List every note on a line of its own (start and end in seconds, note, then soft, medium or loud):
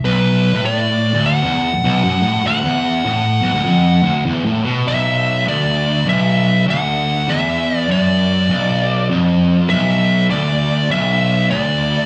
0.04 0.53 B1 loud
0.04 0.65 B4 loud
0.53 1.13 A2 loud
0.66 1.27 D5 medium
1.13 1.43 D2 loud
1.26 2.46 F#5 loud
1.44 1.73 E2 loud
1.74 1.83 B1 medium
1.84 2.03 B1 loud
2.04 2.22 F#2 loud
2.22 2.44 A2 loud
2.44 2.63 D2 loud
2.44 4.23 F#5 medium
2.64 3.05 E2 loud
3.05 3.42 A2 loud
3.42 3.54 B1 loud
3.54 3.65 D2 medium
3.65 4.02 F2 medium
4.03 4.25 D2 medium
4.25 4.44 E2 loud
4.45 4.63 A2 loud
4.65 4.86 B2 loud
4.87 5.46 B1 loud
4.87 5.48 E5 medium
5.46 6.05 D2 loud
5.46 6.09 D5 medium
6.06 6.66 B1 medium
6.06 6.65 E5 medium
6.67 7.27 D2 loud
6.67 7.31 F#5 loud
7.28 7.88 E2 loud
7.28 7.77 E5 loud
7.77 7.91 D5 loud
7.89 8.49 F#2 loud
7.89 9.07 D5 medium
8.49 9.09 B1 medium
9.10 9.70 F2 loud
9.70 10.30 B1 loud
9.70 10.27 E5 loud
10.30 10.90 D2 loud
10.30 10.91 D5 medium
10.90 11.50 B1 medium
10.90 11.50 E5 loud
11.50 12.06 D2 loud
11.50 12.06 D5 medium